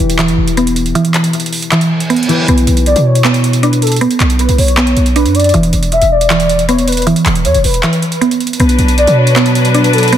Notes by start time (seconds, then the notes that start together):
Already playing: E3 E4 G4 B4
0.00 E1
0.10 closed hi-hat
0.19 E3, clap, closed hi-hat
0.28 G1, closed hi-hat
0.38 E1
0.47 closed hi-hat
0.57 B3, closed hi-hat
0.67 closed hi-hat
0.76 closed hi-hat
0.86 closed hi-hat
0.95 E3, closed hi-hat
1.05 closed hi-hat
1.14 clap, closed hi-hat
1.24 closed hi-hat
1.33 closed hi-hat
1.40 closed hi-hat
1.46 closed hi-hat
1.53 open hi-hat
1.62 closed hi-hat
1.72 E3, clap, closed hi-hat, reverse cymbal
1.81 closed hi-hat
2.00 closed hi-hat
2.10 B3, closed hi-hat
2.16 closed hi-hat
2.23 closed hi-hat
2.28 E3 E4 G4 B4, closed hi-hat
2.48 B1 B3, closed hi-hat
2.58 closed hi-hat
2.67 B1, closed hi-hat
2.77 closed hi-hat
2.86 D5, closed hi-hat
2.96 B2, closed hi-hat
3.05 C#5
3.15 closed hi-hat
3.25 B3, clap, closed hi-hat
3.34 closed hi-hat
3.44 closed hi-hat
3.53 closed hi-hat
3.63 D4 B4, closed hi-hat
3.73 closed hi-hat
3.82 A4, closed hi-hat
3.87 closed hi-hat
3.92 closed hi-hat
3.96 closed hi-hat
4.01 B3, closed hi-hat
4.11 closed hi-hat
4.20 B1, clap, closed hi-hat
4.30 closed hi-hat
4.39 B4, closed hi-hat
4.49 B1, closed hi-hat
4.58 B1 C#5, open hi-hat
4.68 closed hi-hat
4.77 B3, clap, closed hi-hat
4.87 closed hi-hat
4.97 B1, closed hi-hat
5.06 closed hi-hat
5.16 D4 B4, closed hi-hat
5.25 F#2, closed hi-hat
5.35 D5, closed hi-hat
5.40 closed hi-hat
5.44 closed hi-hat
5.49 closed hi-hat
5.54 E1 E3, closed hi-hat
5.63 closed hi-hat
5.73 E1, closed hi-hat
5.83 closed hi-hat
5.92 E5, closed hi-hat
6.01 E1, closed hi-hat
6.11 D5
6.21 closed hi-hat
6.30 E3, clap, closed hi-hat
6.40 closed hi-hat
6.50 closed hi-hat
6.59 closed hi-hat
6.69 B3 C#5, closed hi-hat
6.79 closed hi-hat
6.88 B4, closed hi-hat
6.92 closed hi-hat
6.97 closed hi-hat
7.02 closed hi-hat
7.07 E3, closed hi-hat
7.16 closed hi-hat
7.26 E1, clap, closed hi-hat
7.35 closed hi-hat
7.45 E2 C#5, closed hi-hat
7.54 E1, closed hi-hat
7.64 E1 B4, open hi-hat
7.74 closed hi-hat
7.83 E3, clap, closed hi-hat
7.93 closed hi-hat
8.02 closed hi-hat
8.12 closed hi-hat
8.21 B3, closed hi-hat
8.31 closed hi-hat
8.41 closed hi-hat
8.47 closed hi-hat
8.53 closed hi-hat
8.60 B1 F#3 B3 D4 B4, closed hi-hat
8.69 closed hi-hat
8.79 B1, closed hi-hat
8.88 closed hi-hat
8.98 D5, closed hi-hat
9.07 B2, closed hi-hat
9.17 C#5
9.27 closed hi-hat
9.36 B3, clap, closed hi-hat
9.46 closed hi-hat
9.55 closed hi-hat
9.65 closed hi-hat
9.74 D4 B4, closed hi-hat
9.84 closed hi-hat
9.93 A4, closed hi-hat
9.98 closed hi-hat
10.03 closed hi-hat
10.08 closed hi-hat
10.12 B3, closed hi-hat